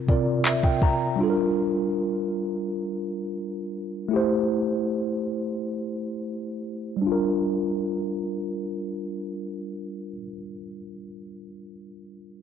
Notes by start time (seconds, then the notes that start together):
0.07 C3 C4 F4 A#4 D5, kick
0.45 E5, clap
0.63 G5, kick
0.82 A#5, kick
1.16 G3 D4
1.21 F4 A4
1.30 A#4
4.08 A3 E4
4.13 G4 C5
6.97 G3
7.02 D4
7.07 F4
7.12 A#4